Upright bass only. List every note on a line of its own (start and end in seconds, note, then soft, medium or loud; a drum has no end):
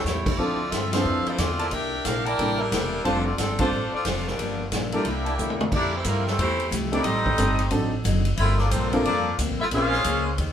0.04 0.37 E2 medium
0.38 0.71 D2 medium
0.71 1.04 G2 medium
1.05 1.24 F2 medium
1.26 muted upright bass stroke soft
1.38 1.71 E2 medium
1.72 2.04 C2 medium
2.05 2.37 A#1 medium
2.39 2.71 A1 medium
2.71 3.04 E1 medium
3.05 3.37 F1 medium
3.38 3.71 G1 medium
3.71 3.91 A1 medium
3.93 muted upright bass stroke soft
4.05 4.37 F1 medium
4.38 4.71 G1 medium
4.72 5.04 A#1 medium
5.05 5.37 C2 medium
5.39 5.71 E2 medium
5.72 6.04 F2 medium
6.05 6.37 G2 medium
6.38 6.71 E2 medium
6.71 7.04 C2 medium
7.04 7.37 A1 medium
7.38 7.70 G1 medium
7.71 8.04 A1 medium
8.04 8.37 F#1 medium
8.38 8.70 G1 medium
8.71 9.04 A#1 medium
9.05 9.38 F2 medium
9.39 9.51 D2 medium
9.49 9.60 A#1 medium
9.61 9.71 G1 medium
9.71 10.04 A#1 medium
10.05 10.37 C#2 medium
10.38 10.53 D#2 medium